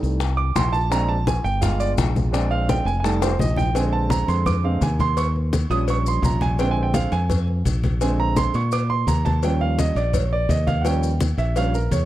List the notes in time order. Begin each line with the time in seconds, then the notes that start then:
Already playing: G3 A3 D#4
0.03 C2, high conga, maracas
0.20 high bongo, high conga, maracas
0.37 D6, high conga
0.56 A#1 C6, high bongo, low bongo, high conga, maracas
0.73 A5, high bongo, maracas
0.90 G#3 C4 D4 A#5, high bongo, high conga, maracas
1.09 A5, high bongo, high conga
1.27 G#5, high bongo, high conga, maracas
1.44 G1 G5, high conga, maracas
1.61 G#3 B3 F4 F5, high bongo, high conga, low conga, maracas
1.80 D5, high bongo, high conga, maracas
1.98 A#1, high bongo, low bongo, high conga, maracas
2.16 high bongo, high conga, maracas
2.32 G#3 C4 D4 D5, high bongo, high conga, maracas
2.51 F5, high bongo, high conga
2.69 G5, high bongo, high conga, maracas
2.85 F1 G#5, high conga, maracas
3.00 G3 G#5
3.04 A3 D#4 A5, high bongo, high conga, maracas
3.22 C5, high bongo, high conga, maracas
3.39 A#1 D#5, low bongo, high conga, maracas
3.56 G5, low bongo, high conga, maracas
3.74 D3 G#3 C4 G#5, cowbell, high conga, maracas
3.92 A5, high conga
4.10 A#5, cowbell, high conga, maracas
4.28 F2 C6, cowbell, high conga, maracas
4.46 D6, cowbell, high conga, low conga, maracas
4.64 D3 G#3 C4 F5, high conga
4.81 D#2 G#5, cowbell, high conga, maracas
5.00 C6, cowbell, high conga, maracas
5.17 C#6, cowbell, high conga, maracas
5.36 high conga
5.53 cowbell, high conga, maracas
5.70 A#1 F3 G3 C#4 D#6, cowbell, high conga, maracas
5.88 C#6, cowbell, high conga, maracas
6.06 C6, high conga, maracas
6.22 A#1 A#5, cowbell, high conga, maracas
6.41 G#5, cowbell, high conga, maracas
6.59 D3 G#3 C4 G5, cowbell, high conga, maracas
6.71 G#5
6.77 high conga
6.83 G5
6.94 F5, cowbell, high conga, maracas
7.12 F2 G#5, cowbell, high conga, maracas
7.30 cowbell, high conga, low conga, maracas
7.48 high conga
7.65 A#1, cowbell, high conga, maracas
7.84 cowbell, high conga, maracas
8.01 D3 G#3 C4 G#5, cowbell, high conga, maracas
8.19 A#5, high conga
8.37 C6, cowbell, high conga, maracas
8.54 A#2 C#6, cowbell, high conga, maracas
8.72 D6, cowbell, high conga, maracas
8.90 C6, high conga
9.07 D#2 A#5, cowbell, high conga, maracas
9.25 A5, cowbell, high conga, maracas
9.43 F3 G3 C#4 G5, cowbell, high conga, maracas
9.61 F5, high conga
9.78 D#5, cowbell, high conga, maracas
9.95 A#1 D5, cowbell, high conga, maracas
10.13 C#5, cowbell, high conga, low conga, maracas
10.31 D5, high conga
10.49 D#2 D#5, cowbell, high conga, maracas
10.67 F5, cowbell, high conga, maracas
10.81 F3 G3 F#5, cowbell
10.85 C#4 G5, high conga, maracas
11.03 high conga, maracas
11.21 cowbell, high conga, maracas
11.37 A#1 E5, cowbell, high conga, maracas
11.56 F3 G3 C#4 F5, cowbell, high conga, maracas
11.74 A#4, high conga, maracas
11.91 E2 C#5, cowbell, high conga, maracas